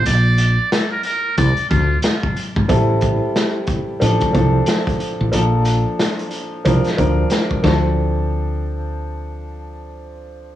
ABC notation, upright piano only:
X:1
M:4/4
L:1/8
Q:"Swing 16ths" 1/4=91
K:Dm
V:1 name="Upright piano"
z8 | [G,CEA]4 [F,CDA] [F,CDA]3 | [F,B,DA]4 [F,CDB] [F,CDB]2 [F,CDA]- | [F,CDA]8 |]